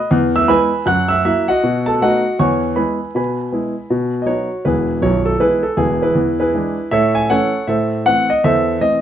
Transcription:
Already playing: D#6
0.11 E2
0.36 E5 E6
0.48 G#3 B3 E4 B4 G#5 B5
0.86 F#2 F#5 F#6
1.08 E5 E6
1.25 F#3 A#3 E4 E5
1.48 F#4 D#5 F#5
1.63 B2
1.86 A4 A5
2.01 A3 B3 D#4 F#4 D#5 F#5
2.39 E2 C#5 G#5 C#6
2.76 G#3 B3 E4 B4 G#5 B5
3.15 B2 B4 G#5 B5
3.52 G#3 B3 E4
3.90 B2
4.22 F#3 D#5
4.26 B3 D#4 F#4 C#5
4.65 E1 E2 E4 G#4 B4
5.02 B0 B1 C#5
5.26 A4
5.39 E3 G#3 B3 E4 G#4 B4
5.63 A4
5.77 E1 E2 B3 E4 G#4
6.02 E4 G#4 B4
6.15 E2
6.40 E4 G#4 B4
6.54 E3 G#3 D4
6.91 A2 A4 C#5 E5
7.15 G#5
7.29 E3 A3 C#4 A4 C#5 F#5
7.67 A2 A4 C5 E5
8.06 E3 A3 C4 F#5
8.30 D#5
8.44 E2 A4 C5 E5
8.80 E3 A3 C4 D#5

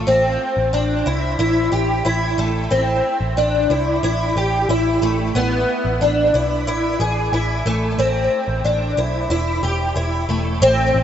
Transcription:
0.07 A1 C4
0.57 A1
0.73 A1 D4
1.06 C2 E4
1.39 A1 E4
1.72 A1 G4
2.05 A1 E4
2.38 A1 A3
2.71 A1 C4
3.20 A1
3.37 A1 D4
3.70 C2 E4
4.03 A1 E4
4.36 A1 G4
4.69 A1 E4
5.02 A1 A3
5.35 A1 B3
5.85 A1
6.01 A1 D4
6.34 B1 E4
6.67 A1 E4
7.00 A1 G#4
7.32 A1 E4
7.66 A1 A3
7.98 A1 C4
8.48 A1
8.64 A1 D4
8.97 B1 E4
9.30 E1 E4
9.63 E1 G4
9.96 E1 E4
10.29 E1 A3
10.62 A1 C4
10.94 A1

